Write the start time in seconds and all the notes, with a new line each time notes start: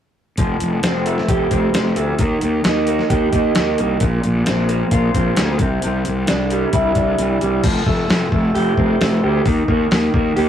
0.38 F1 F3, kick, closed hi-hat
0.60 F1, closed hi-hat
0.83 F1 C4, snare, closed hi-hat
1.06 A3, closed hi-hat
1.18 snare
1.28 F1 G4, kick, closed hi-hat
1.51 F1 C4, kick, closed hi-hat
1.73 F1 F3, snare, closed hi-hat
1.96 D2 A3, closed hi-hat
2.19 D#2 D#3, kick, closed hi-hat
2.41 D#2, closed hi-hat
2.64 D#2 D#4, snare, closed hi-hat
2.87 A#3, closed hi-hat
2.99 snare
3.10 D#2 G4, kick, closed hi-hat
3.33 D#2 D#4, kick, closed hi-hat
3.55 D#2 D#3, snare, closed hi-hat
3.78 C2 A#3, closed hi-hat
4.00 A#1 A#2, kick, closed hi-hat
4.23 A#1, closed hi-hat
4.46 A#1 C4, snare, closed hi-hat
4.69 A#3, closed hi-hat
4.91 A#1 F4, kick, closed hi-hat
5.14 A#1 C4, kick, closed hi-hat
5.36 D2 D3, snare, closed hi-hat
5.59 C2 C3, kick, closed hi-hat
5.82 C2 C3, closed hi-hat
6.05 C2, closed hi-hat
6.27 C2 D4, snare, closed hi-hat
6.50 G3, closed hi-hat
6.73 C2 E4, kick, closed hi-hat
6.95 C2 D4, kick, closed hi-hat
7.18 C2 E3, closed hi-hat
7.41 C2 G3, closed hi-hat
7.64 F1 F3, kick, open hi-hat, crash
7.87 F1 A3, kick
8.09 F1 F3, snare, open hi-hat
8.32 F1 A3, kick
8.55 F1 G4, open hi-hat
8.77 F1 C4, kick
9.01 F1 A3, snare, open hi-hat
9.24 D2 G4
9.46 D#2 D#3, kick, open hi-hat
9.68 D#2 A#3, kick
9.91 D#2 D#3, snare, open hi-hat
10.14 D#2 A#3, kick
10.36 D#2 G4, open hi-hat